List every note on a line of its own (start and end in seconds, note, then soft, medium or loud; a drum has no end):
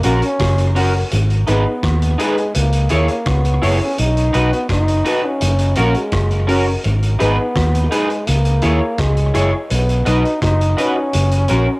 0.03 0.21 A#1 medium
0.03 0.13 A#3 medium
0.03 0.20 C#4 medium
0.03 0.23 C#4 medium
0.03 0.20 F#4 medium
0.03 0.23 F#4 medium
0.03 0.20 A#4 medium
0.03 0.24 A#4 medium
0.03 closed hi-hat medium
0.22 0.73 C#4 loud
0.22 closed hi-hat soft
0.39 1.03 F#1 medium
0.39 kick loud
0.39 cross-stick loud
0.39 closed hi-hat medium
0.58 closed hi-hat soft
0.75 0.91 C#4 medium
0.75 0.95 C#4 medium
0.75 0.92 F#4 medium
0.75 0.94 F#4 medium
0.75 0.92 A#4 medium
0.75 0.94 A#4 medium
0.75 open hi-hat medium
0.95 1.02 F#4 soft
0.95 1.01 A#4 soft
1.11 1.44 G#1 loud
1.11 closed hi-hat loud
1.30 closed hi-hat soft
1.47 1.64 G#1 loud
1.47 2.22 B3 medium
1.47 1.63 D#4 medium
1.47 1.66 D#4 medium
1.47 1.63 G#4 medium
1.47 1.67 G#4 medium
1.47 1.64 B4 medium
1.47 1.67 B4 medium
1.47 closed hi-hat medium
1.83 2.15 D#2 medium
1.83 kick loud
1.83 cross-stick loud
1.83 closed hi-hat medium
2.02 closed hi-hat medium
2.18 2.55 G#3 medium
2.18 2.34 D#4 medium
2.18 2.38 D#4 medium
2.18 2.35 G#4 medium
2.18 2.38 G#4 medium
2.18 2.35 B4 medium
2.18 2.38 B4 medium
2.18 closed hi-hat medium
2.37 muted clean electric guitar stroke soft
2.37 closed hi-hat soft
2.55 2.87 C#2 loud
2.55 2.89 A#3 medium
2.55 closed hi-hat loud
2.72 closed hi-hat medium
2.89 3.07 D#2 medium
2.89 3.30 A#3 medium
2.89 3.06 E4 medium
2.89 3.09 E4 medium
2.89 3.06 G#4 medium
2.89 3.10 G#4 medium
2.89 3.07 C#5 medium
2.89 3.10 C#5 medium
2.89 closed hi-hat medium
3.08 closed hi-hat soft
3.26 3.58 C#2 medium
3.26 3.82 B3 medium
3.26 kick loud
3.26 cross-stick loud
3.26 closed hi-hat medium
3.45 closed hi-hat soft
3.62 3.79 F#1 medium
3.62 3.81 E4 medium
3.62 3.78 E4 medium
3.62 3.81 G#4 medium
3.62 3.78 G#4 medium
3.62 3.81 C#5 medium
3.62 3.78 C#5 medium
3.62 open hi-hat medium
3.82 4.01 C#4 loud
3.98 4.30 B1 loud
3.98 4.55 D#4 loud
3.98 closed hi-hat loud
4.17 closed hi-hat soft
4.33 4.51 B1 medium
4.33 4.49 D#4 medium
4.33 4.52 D#4 medium
4.33 4.49 F#4 medium
4.33 4.53 F#4 medium
4.33 4.50 B4 loud
4.33 4.53 B4 loud
4.33 closed hi-hat medium
4.53 4.70 B3 medium
4.53 closed hi-hat soft
4.69 5.01 F#1 medium
4.69 5.27 D#4 loud
4.69 kick loud
4.69 cross-stick loud
4.69 closed hi-hat medium
4.88 closed hi-hat medium
5.05 5.21 D#4 medium
5.05 5.24 D#4 medium
5.05 5.21 F#4 loud
5.05 5.24 F#4 medium
5.05 5.21 B4 medium
5.05 5.25 B4 medium
5.05 closed hi-hat medium
5.23 5.80 C#4 medium
5.23 muted clean electric guitar stroke soft
5.41 5.73 F#1 loud
5.41 closed hi-hat loud
5.59 closed hi-hat medium
5.75 5.94 A#1 medium
5.75 5.98 A#3 medium
5.75 5.92 C#4 medium
5.75 5.95 C#4 medium
5.75 5.93 F#4 medium
5.75 5.96 F#4 medium
5.75 5.93 A#4 medium
5.75 5.96 A#4 loud
5.75 closed hi-hat medium
5.94 6.49 G#3 medium
5.94 closed hi-hat soft
6.12 6.75 F#1 medium
6.12 kick loud
6.12 cross-stick loud
6.12 closed hi-hat medium
6.31 closed hi-hat soft
6.47 6.64 C#4 medium
6.47 6.67 C#4 medium
6.47 6.64 F#4 medium
6.47 6.65 F#4 medium
6.47 6.64 A#4 medium
6.47 6.65 A#4 medium
6.47 open hi-hat medium
6.67 6.74 F#4 soft
6.67 6.74 A#4 soft
6.84 7.16 G#1 loud
6.84 closed hi-hat loud
7.03 closed hi-hat soft
7.19 7.37 G#1 medium
7.19 7.94 B3 medium
7.19 7.35 D#4 medium
7.19 7.38 D#4 medium
7.19 7.36 G#4 medium
7.19 7.39 G#4 medium
7.19 7.36 B4 loud
7.19 7.39 B4 loud
7.19 closed hi-hat medium
7.56 7.87 D#2 medium
7.56 kick loud
7.56 cross-stick loud
7.56 closed hi-hat medium
7.75 closed hi-hat medium
7.91 8.29 G#3 medium
7.91 8.10 D#4 medium
7.91 8.07 D#4 medium
7.91 8.10 G#4 medium
7.91 8.07 G#4 medium
7.91 8.11 B4 medium
7.91 8.08 B4 medium
7.91 closed hi-hat medium
8.10 muted clean electric guitar stroke soft
8.10 closed hi-hat soft
8.27 8.59 C#2 loud
8.27 9.01 A#3 medium
8.27 closed hi-hat loud
8.45 closed hi-hat medium
8.62 8.80 D#2 medium
8.62 8.78 E4 medium
8.62 8.82 E4 medium
8.62 8.79 G#4 medium
8.62 8.82 G#4 medium
8.62 8.79 C#5 medium
8.62 8.82 C#5 medium
8.62 closed hi-hat medium
8.98 9.30 C#2 medium
8.98 9.53 G#3 medium
8.98 kick loud
8.98 cross-stick loud
8.98 closed hi-hat medium
9.17 closed hi-hat soft
9.34 9.51 F#1 medium
9.34 9.53 E4 medium
9.34 9.50 E4 medium
9.34 9.53 G#4 medium
9.34 9.50 G#4 medium
9.34 9.51 C#5 medium
9.34 9.54 C#5 loud
9.34 closed hi-hat medium
9.70 10.02 B1 loud
9.70 10.09 B3 medium
9.70 closed hi-hat medium
9.89 closed hi-hat soft
10.05 10.23 B1 medium
10.05 10.25 D#4 medium
10.05 10.43 D#4 loud
10.05 10.22 F#4 medium
10.05 10.25 F#4 medium
10.05 10.22 B4 medium
10.05 10.25 B4 loud
10.05 10.22 D#5 loud
10.05 closed hi-hat medium
10.25 closed hi-hat soft
10.42 10.73 F#1 medium
10.42 10.81 D#4 loud
10.42 kick loud
10.42 cross-stick loud
10.42 closed hi-hat medium
10.61 closed hi-hat soft
10.77 11.80 C#4 loud
10.77 10.96 D#4 medium
10.77 10.93 F#4 medium
10.77 10.97 F#4 medium
10.77 10.94 B4 medium
10.77 10.97 B4 medium
10.77 10.94 D#5 medium
10.77 closed hi-hat medium
10.96 muted clean electric guitar stroke soft
11.13 11.45 F#1 loud
11.13 closed hi-hat loud
11.31 closed hi-hat medium
11.48 11.66 A#1 medium
11.48 11.65 C#4 medium
11.48 11.68 C#4 medium
11.48 11.65 F#4 medium
11.48 11.68 F#4 medium
11.48 11.65 A#4 medium
11.48 11.69 A#4 medium
11.48 closed hi-hat medium